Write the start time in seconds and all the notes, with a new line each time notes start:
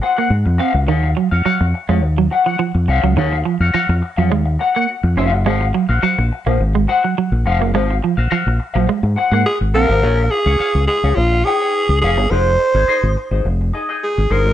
0.02 F#4 C5 F#5, muted clean electric guitar stroke
0.17 A#3 F#4 C5 F#5
0.30 G#2
0.46 F2, muted clean electric guitar stroke
0.58 C4 F#4 C5 F5
0.74 C#2, muted clean electric guitar stroke
0.87 D#2 D#3 F#4 C#5 F5
1.04 muted clean electric guitar stroke
1.17 F#3, muted clean electric guitar stroke
1.31 F2 F#4 C#5 F5
1.45 F#3 F#4 C#5 F5, muted fingered electric bass stroke
1.61 F2, muted clean electric guitar stroke
1.74 muted clean electric guitar stroke
1.89 F2 G#3 F#4 C#5 F5
2.02 D#2, muted clean electric guitar stroke
2.17 F#3, muted clean electric guitar stroke
2.31 F#4 C#5 F#5, muted clean electric guitar stroke
2.46 F3 F#4 C#5 F#5
2.59 F3
2.75 F2, muted clean electric guitar stroke
2.88 C2 F#4 C#5 F5, muted clean electric guitar stroke
3.03 C#2 F#3, muted clean electric guitar stroke
3.17 D#2 D#3 F#4 C#5 F5
3.33 muted clean electric guitar stroke
3.45 F3, muted clean electric guitar stroke
3.60 F2 F#4 C#5 F5
3.73 F3 F#4 C#5 F5, muted fingered electric bass stroke
3.89 F2, muted clean electric guitar stroke
4.02 muted clean electric guitar stroke
4.17 F2 F#3 F#4 C#5 F5
4.31 D#2 G#3, muted clean electric guitar stroke
4.46 muted clean electric guitar stroke
4.59 F#4 C#5 F#5, muted clean electric guitar stroke
4.75 A#3 F#4 C#5 F#5
5.03 F2, muted clean electric guitar stroke
5.17 F1 C#4 F#4 C#5 F5
5.33 F#1, muted clean electric guitar stroke
5.46 G#1 G#3 F#4 C5 F5
5.61 muted clean electric guitar stroke
5.74 F#3, muted clean electric guitar stroke
5.89 A#1 F#4 C5 F5
6.02 F#3 F#4 C5 F5
6.18 A#1, muted clean electric guitar stroke
6.32 muted clean electric guitar stroke
6.46 A#1 A#3 F#4 C5 F5
6.60 G#1
6.75 G#3, muted clean electric guitar stroke
6.88 F#4 C5 F#5, muted clean electric guitar stroke
7.04 F#3, muted clean electric guitar stroke
7.18 F#3
7.32 A#1, muted clean electric guitar stroke
7.46 F1 F#4 C5 F5, muted clean electric guitar stroke
7.60 F#1 A#3, muted clean electric guitar stroke
7.74 G#1 G#3 F#4 C5 F5
7.91 muted clean electric guitar stroke
8.03 F3, muted clean electric guitar stroke
8.17 A#1 F#4 C5 F5
8.31 F3 F#4 C5 F5
8.46 A#1, muted clean electric guitar stroke
8.59 muted clean electric guitar stroke
8.74 A#1 F#3 F#4 C5 F5
8.88 G#3, muted clean electric guitar stroke
9.03 G#2, muted clean electric guitar stroke
9.16 F#4 C5 F#5, muted clean electric guitar stroke
9.32 G#2 A#3 F#4 C5 F#5
9.46 G#4, muted clean electric guitar stroke
9.61 G#1, muted clean electric guitar stroke
9.74 A#1 C4 F#4 A#4 C5 F5
9.89 G#1 F#4 C5 F5
10.02 A#1 G#4 C#5 F5
10.30 G#4, muted clean electric guitar stroke
10.46 C#2 G#4 C#5 F5
10.59 G#4 C#5 F5, muted fingered electric bass stroke
10.75 C#2
10.87 G#4, muted clean electric guitar stroke
11.03 C#2 G#4 C#5 F5
11.15 A#1 F4, muted clean electric guitar stroke
11.32 muted clean electric guitar stroke
11.45 G#4 C#5 G5
11.60 G#4 C#5 G5
11.89 C#2, muted clean electric guitar stroke
12.02 F1 G#4 C#5 F5
12.17 G1, muted clean electric guitar stroke
12.30 F1 D#4 G#4 C5
12.59 muted clean electric guitar stroke
12.74 G#1 D#4 G#4 C5
12.88 D#4 G#4 C5
13.03 G#1
13.16 muted clean electric guitar stroke
13.31 G#1 D#4 G#4 C5
13.45 F1, muted clean electric guitar stroke
13.61 muted clean electric guitar stroke
13.74 D#4 G#4 D#5
13.89 D#4 G#4 D#5
14.04 G#4
14.18 G#1, muted clean electric guitar stroke
14.30 G1 D#4 G#4 A#4 C5
14.46 G#1, muted clean electric guitar stroke